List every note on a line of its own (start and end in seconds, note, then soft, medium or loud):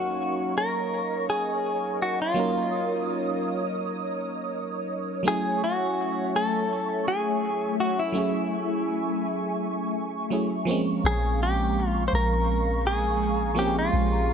0.00 2.31 F#3 medium
0.00 2.32 A#3 medium
0.00 2.33 C#4 medium
0.00 2.33 D#4 medium
0.00 0.57 F#4 medium
0.00 5.22 A#4 medium
0.00 8.11 C#5 medium
0.00 5.22 D#5 medium
0.00 2.34 F5 medium
0.00 2.34 C#6 medium
0.58 1.25 A#4 loud
1.30 2.02 G#4 medium
2.02 2.21 F#4 medium
2.22 3.61 F4 medium
2.34 5.21 F#3 medium
2.34 5.21 A#3 medium
2.34 5.22 C#4 medium
2.34 5.23 D#4 medium
2.34 5.23 D#6 medium
2.40 5.23 A#4 medium
5.23 8.09 F#3 medium
5.23 8.10 A3 medium
5.23 10.63 A3 medium
5.23 8.11 C#4 medium
5.23 10.64 E5 medium
5.23 14.33 C#6 medium
5.27 8.11 E4 medium
5.27 5.63 G#4 loud
5.27 8.12 G#5 medium
5.64 6.36 F#4 medium
6.36 7.08 A4 loud
7.08 7.75 G#4 medium
7.80 8.00 F#4 medium
7.99 9.39 E4 medium
8.12 10.26 F#3 medium
8.12 10.27 A3 medium
8.12 10.28 C#4 medium
8.12 10.28 E4 medium
8.12 10.65 G#5 medium
8.18 10.29 G#4 medium
10.30 10.67 F#3 medium
10.30 10.68 A3 medium
10.30 10.68 C#4 soft
10.30 10.68 E4 soft
10.30 10.68 G#4 medium
10.65 13.52 F3 medium
10.65 14.33 G#3 medium
10.65 13.52 A#3 medium
10.65 13.53 C4 medium
10.65 14.33 F5 medium
10.65 14.33 A#5 medium
10.70 13.54 G#3 medium
10.70 13.54 C#4 medium
11.04 12.09 A#1 loud
11.04 11.42 G#4 loud
11.43 11.88 G4 medium
11.88 12.03 F4 medium
12.08 12.13 C5 medium
12.13 13.89 A#1 medium
12.13 12.86 A#4 loud
12.87 13.58 G#4 medium
13.55 14.33 F3 medium
13.55 14.33 A#3 medium
13.55 14.33 C4 medium
13.55 14.33 C#4 medium
13.59 13.76 G4 medium
13.59 13.65 G4 medium
13.66 14.33 G#4 medium
13.79 14.33 F4 medium
13.93 14.33 A#1 loud